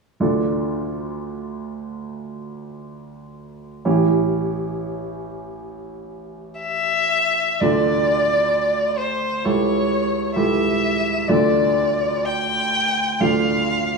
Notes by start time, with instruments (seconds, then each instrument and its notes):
0.20 grand piano D2 D4 F4 A4
3.85 grand piano A1 C#4 E4 G4
6.60 violin E5
7.60 grand piano D2 D4 F4 A4, violin D5
8.98 violin C5
9.44 grand piano C#2 E4 G4 A4, violin C#5
10.36 grand piano C#2 E4 G4 A4, violin E5
11.28 grand piano D2 D4 F4 A4, violin D5
12.26 violin G5
13.20 grand piano D2 D4 F4 A4, violin F5